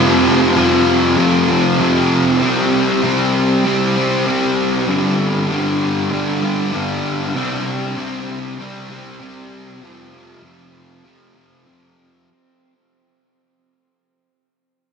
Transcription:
Already playing: F2 C3 F3 C4
0.56 F2 C3 F3
1.17 F2 C3 F3
1.48 C3 F3
1.79 F2 C3 F3
2.41 C3 G3 C4
3.03 C3 G3 C4
3.65 C3 G3 C4
3.96 G3 C4
4.26 C3 G3 C4
4.88 G2 D3 G3
5.49 G2 D3 G3
6.11 G2 D3 G3
6.42 D3 G3
6.73 G2 D3 G3
7.36 C3 G3 C4
7.97 C3 G3 C4
8.59 C3 G3 C4
8.89 G3 C4
9.20 C3 G3 C4
9.82 F2 C3 F3
10.43 F2 C3 F3
11.04 F2 C3 F3
11.36 C3 F3
11.66 F2 C3 F3

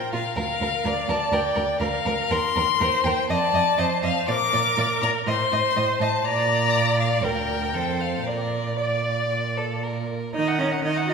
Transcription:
Already playing: A#4 G5
0.13 A#2 F4 F5
0.36 D2 A#4 F5
0.61 D2 A#4
0.85 D2 A#4 D5
1.09 D2 A#4 A5
1.32 D2 A#4 G5
1.55 D2 A#4
1.80 D2 A#4 F5
2.05 D2 A#4
2.31 D#2 A#4 C6
2.56 D#2 A#4
2.81 D#2 A#4 C5
3.04 D#2 A#4 G5
3.29 F2 D5 D#5 A5
3.53 F2 D#5
3.78 F2 C5 D#5
4.03 F2 D#5 F5
4.28 A#2 A#4 D5 D6
4.53 A#2 D5
4.78 A#2 D5
5.02 A#2 D5 A#5
5.27 A2 C5 D#5 C6
5.52 A2 D#5
5.76 A2 D#5
6.00 A2 D#5 A5
6.25 A#2 D5 A#5
6.99 F5
7.24 D2 A#4 G5
7.74 F2 A4 C5
8.01 F5
8.26 A#2 A#4 D5
8.79 D5
9.57 A4
9.83 A#4
10.34 D#3 D#4 D#5 A#5
10.48 F#5 D#6
10.59 C#4 D#5 A#5
10.72 F#5 D#6
10.83 D#3 D#4 D#5 A#5
10.96 F#5 D#6
11.09 F#4 D#5 A#5

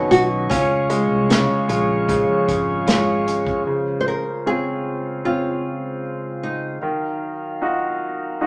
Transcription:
Already playing: B2 D#3 F#3 B3 C#4 F#4 G#4 B4 C#5 D#5 C#6
0.11 B1 C#4 F#4, closed hi-hat
0.50 C#2 C#4 F4 G#4 C#5 F5, kick, closed hi-hat
0.90 G#3, closed hi-hat
1.10 C2
1.30 C#3 C#4, snare, closed hi-hat
1.68 A#1 G#3 F4, closed hi-hat
2.08 C#3 F3, kick, closed hi-hat
2.48 G#1 C#4, kick, closed hi-hat
2.87 G#3 F4, snare, closed hi-hat
3.27 C#4, closed hi-hat
3.47 kick
3.66 C#3 G#3 F4 C5
4.01 C5
4.08 A#4
4.46 C4 C#4 F4 G#4
5.25 C4 C#4 F4
6.43 D#4
6.81 D#3 F#3 D#4 A#4 F5
7.62 D#4 F4 F#4
8.41 D#4 F4 F#4

